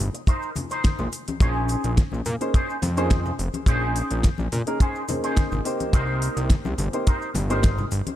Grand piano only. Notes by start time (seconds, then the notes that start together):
2.41 A#3 C#4 D#4 G#4 C5
2.97 A#3 C#4 D#4 G#4 C5
4.67 A#3 C#4 D#4 G#4 A#4
5.08 A#3 C#4 D#4 G#4 C5
5.64 A#3 C4 D#4 G4 C5
6.93 A#3 C4 D#4 G4 C5
7.50 A#3 C4 D#4 G4 C5